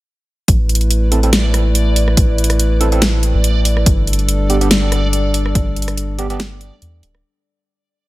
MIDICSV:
0, 0, Header, 1, 6, 480
1, 0, Start_track
1, 0, Tempo, 422535
1, 549, Time_signature, 4, 2, 24, 8
1, 9182, End_track
2, 0, Start_track
2, 0, Title_t, "Synth texture"
2, 0, Program_c, 0, 99
2, 546, Note_on_c, 0, 74, 81
2, 8237, Note_off_c, 0, 74, 0
2, 9182, End_track
3, 0, Start_track
3, 0, Title_t, "Analog synth pad"
3, 0, Program_c, 1, 89
3, 547, Note_on_c, 1, 64, 74
3, 548, Note_on_c, 1, 71, 91
3, 549, Note_on_c, 1, 57, 78
3, 4350, Note_off_c, 1, 57, 0
3, 4350, Note_off_c, 1, 64, 0
3, 4350, Note_off_c, 1, 71, 0
3, 4386, Note_on_c, 1, 55, 78
3, 4386, Note_on_c, 1, 62, 76
3, 4386, Note_on_c, 1, 69, 88
3, 8189, Note_off_c, 1, 55, 0
3, 8189, Note_off_c, 1, 62, 0
3, 8189, Note_off_c, 1, 69, 0
3, 9182, End_track
4, 0, Start_track
4, 0, Title_t, "Tine electric piano"
4, 0, Program_c, 2, 4
4, 1268, Note_on_c, 2, 60, 76
4, 1268, Note_on_c, 2, 64, 73
4, 1268, Note_on_c, 2, 69, 88
4, 1351, Note_off_c, 2, 60, 0
4, 1351, Note_off_c, 2, 64, 0
4, 1351, Note_off_c, 2, 69, 0
4, 1399, Note_on_c, 2, 60, 78
4, 1399, Note_on_c, 2, 64, 69
4, 1399, Note_on_c, 2, 69, 82
4, 1468, Note_off_c, 2, 64, 0
4, 1469, Note_off_c, 2, 60, 0
4, 1469, Note_off_c, 2, 69, 0
4, 3187, Note_on_c, 2, 60, 91
4, 3187, Note_on_c, 2, 64, 83
4, 3187, Note_on_c, 2, 69, 99
4, 3271, Note_off_c, 2, 60, 0
4, 3271, Note_off_c, 2, 64, 0
4, 3271, Note_off_c, 2, 69, 0
4, 3318, Note_on_c, 2, 60, 82
4, 3318, Note_on_c, 2, 64, 76
4, 3319, Note_on_c, 2, 69, 91
4, 3430, Note_off_c, 2, 60, 0
4, 3430, Note_off_c, 2, 64, 0
4, 3430, Note_off_c, 2, 69, 0
4, 5108, Note_on_c, 2, 59, 77
4, 5108, Note_on_c, 2, 62, 72
4, 5108, Note_on_c, 2, 67, 89
4, 5191, Note_off_c, 2, 59, 0
4, 5191, Note_off_c, 2, 62, 0
4, 5191, Note_off_c, 2, 67, 0
4, 5238, Note_on_c, 2, 59, 77
4, 5238, Note_on_c, 2, 62, 72
4, 5239, Note_on_c, 2, 67, 82
4, 5308, Note_off_c, 2, 59, 0
4, 5308, Note_off_c, 2, 62, 0
4, 5308, Note_off_c, 2, 67, 0
4, 7027, Note_on_c, 2, 59, 93
4, 7027, Note_on_c, 2, 62, 82
4, 7027, Note_on_c, 2, 67, 96
4, 7111, Note_off_c, 2, 59, 0
4, 7111, Note_off_c, 2, 62, 0
4, 7111, Note_off_c, 2, 67, 0
4, 7157, Note_on_c, 2, 62, 76
4, 7158, Note_on_c, 2, 59, 83
4, 7158, Note_on_c, 2, 67, 94
4, 7269, Note_off_c, 2, 62, 0
4, 7270, Note_off_c, 2, 59, 0
4, 7270, Note_off_c, 2, 67, 0
4, 9182, End_track
5, 0, Start_track
5, 0, Title_t, "Sub bass"
5, 0, Program_c, 3, 38
5, 548, Note_on_c, 3, 33, 102
5, 2454, Note_off_c, 3, 33, 0
5, 2469, Note_on_c, 3, 33, 98
5, 3783, Note_off_c, 3, 33, 0
5, 3799, Note_on_c, 3, 33, 103
5, 4375, Note_off_c, 3, 33, 0
5, 4388, Note_on_c, 3, 31, 101
5, 6294, Note_off_c, 3, 31, 0
5, 6307, Note_on_c, 3, 31, 102
5, 7622, Note_off_c, 3, 31, 0
5, 7746, Note_on_c, 3, 40, 106
5, 7970, Note_off_c, 3, 40, 0
5, 9182, End_track
6, 0, Start_track
6, 0, Title_t, "Drums"
6, 548, Note_on_c, 9, 36, 118
6, 548, Note_on_c, 9, 42, 85
6, 661, Note_off_c, 9, 36, 0
6, 662, Note_off_c, 9, 42, 0
6, 788, Note_on_c, 9, 42, 51
6, 853, Note_off_c, 9, 42, 0
6, 853, Note_on_c, 9, 42, 70
6, 919, Note_off_c, 9, 42, 0
6, 919, Note_on_c, 9, 42, 38
6, 1028, Note_off_c, 9, 42, 0
6, 1028, Note_on_c, 9, 42, 86
6, 1142, Note_off_c, 9, 42, 0
6, 1269, Note_on_c, 9, 42, 57
6, 1383, Note_off_c, 9, 42, 0
6, 1400, Note_on_c, 9, 42, 39
6, 1508, Note_off_c, 9, 42, 0
6, 1508, Note_on_c, 9, 38, 124
6, 1508, Note_on_c, 9, 42, 84
6, 1622, Note_off_c, 9, 38, 0
6, 1622, Note_off_c, 9, 42, 0
6, 1749, Note_on_c, 9, 37, 58
6, 1749, Note_on_c, 9, 42, 54
6, 1863, Note_off_c, 9, 37, 0
6, 1863, Note_off_c, 9, 42, 0
6, 1989, Note_on_c, 9, 42, 81
6, 2102, Note_off_c, 9, 42, 0
6, 2229, Note_on_c, 9, 46, 91
6, 2342, Note_off_c, 9, 46, 0
6, 2360, Note_on_c, 9, 37, 52
6, 2468, Note_on_c, 9, 36, 123
6, 2468, Note_on_c, 9, 42, 87
6, 2473, Note_off_c, 9, 37, 0
6, 2581, Note_off_c, 9, 42, 0
6, 2582, Note_off_c, 9, 36, 0
6, 2708, Note_on_c, 9, 42, 53
6, 2772, Note_off_c, 9, 42, 0
6, 2772, Note_on_c, 9, 42, 70
6, 2838, Note_off_c, 9, 42, 0
6, 2838, Note_on_c, 9, 37, 60
6, 2838, Note_on_c, 9, 42, 38
6, 2948, Note_off_c, 9, 42, 0
6, 2948, Note_on_c, 9, 42, 84
6, 2952, Note_off_c, 9, 37, 0
6, 3062, Note_off_c, 9, 42, 0
6, 3189, Note_on_c, 9, 42, 56
6, 3302, Note_off_c, 9, 42, 0
6, 3318, Note_on_c, 9, 42, 39
6, 3428, Note_off_c, 9, 42, 0
6, 3428, Note_on_c, 9, 38, 125
6, 3428, Note_on_c, 9, 42, 85
6, 3542, Note_off_c, 9, 38, 0
6, 3542, Note_off_c, 9, 42, 0
6, 3668, Note_on_c, 9, 42, 54
6, 3782, Note_off_c, 9, 42, 0
6, 3908, Note_on_c, 9, 42, 80
6, 4022, Note_off_c, 9, 42, 0
6, 4148, Note_on_c, 9, 46, 88
6, 4262, Note_off_c, 9, 46, 0
6, 4280, Note_on_c, 9, 37, 52
6, 4388, Note_on_c, 9, 36, 127
6, 4388, Note_on_c, 9, 42, 85
6, 4393, Note_off_c, 9, 37, 0
6, 4502, Note_off_c, 9, 36, 0
6, 4502, Note_off_c, 9, 42, 0
6, 4628, Note_on_c, 9, 42, 54
6, 4693, Note_off_c, 9, 42, 0
6, 4693, Note_on_c, 9, 42, 69
6, 4759, Note_off_c, 9, 42, 0
6, 4759, Note_on_c, 9, 42, 39
6, 4868, Note_off_c, 9, 42, 0
6, 4868, Note_on_c, 9, 42, 83
6, 4982, Note_off_c, 9, 42, 0
6, 5109, Note_on_c, 9, 42, 55
6, 5222, Note_off_c, 9, 42, 0
6, 5240, Note_on_c, 9, 42, 38
6, 5348, Note_off_c, 9, 42, 0
6, 5348, Note_on_c, 9, 38, 127
6, 5348, Note_on_c, 9, 42, 85
6, 5462, Note_off_c, 9, 38, 0
6, 5462, Note_off_c, 9, 42, 0
6, 5589, Note_on_c, 9, 37, 60
6, 5589, Note_on_c, 9, 42, 53
6, 5702, Note_off_c, 9, 37, 0
6, 5702, Note_off_c, 9, 42, 0
6, 5828, Note_on_c, 9, 42, 76
6, 5942, Note_off_c, 9, 42, 0
6, 6068, Note_on_c, 9, 46, 90
6, 6181, Note_off_c, 9, 46, 0
6, 6198, Note_on_c, 9, 37, 53
6, 6307, Note_on_c, 9, 36, 124
6, 6308, Note_on_c, 9, 42, 81
6, 6312, Note_off_c, 9, 37, 0
6, 6421, Note_off_c, 9, 36, 0
6, 6421, Note_off_c, 9, 42, 0
6, 6548, Note_on_c, 9, 42, 51
6, 6614, Note_off_c, 9, 42, 0
6, 6614, Note_on_c, 9, 42, 67
6, 6679, Note_off_c, 9, 42, 0
6, 6679, Note_on_c, 9, 37, 63
6, 6679, Note_on_c, 9, 42, 37
6, 6787, Note_off_c, 9, 42, 0
6, 6787, Note_on_c, 9, 42, 80
6, 6792, Note_off_c, 9, 37, 0
6, 6901, Note_off_c, 9, 42, 0
6, 7027, Note_on_c, 9, 42, 55
6, 7140, Note_off_c, 9, 42, 0
6, 7158, Note_on_c, 9, 42, 38
6, 7268, Note_off_c, 9, 42, 0
6, 7268, Note_on_c, 9, 38, 124
6, 7268, Note_on_c, 9, 42, 78
6, 7381, Note_off_c, 9, 38, 0
6, 7381, Note_off_c, 9, 42, 0
6, 7507, Note_on_c, 9, 42, 54
6, 7621, Note_off_c, 9, 42, 0
6, 7747, Note_on_c, 9, 42, 78
6, 7861, Note_off_c, 9, 42, 0
6, 7987, Note_on_c, 9, 46, 92
6, 8100, Note_off_c, 9, 46, 0
6, 8118, Note_on_c, 9, 37, 56
6, 8231, Note_off_c, 9, 37, 0
6, 9182, End_track
0, 0, End_of_file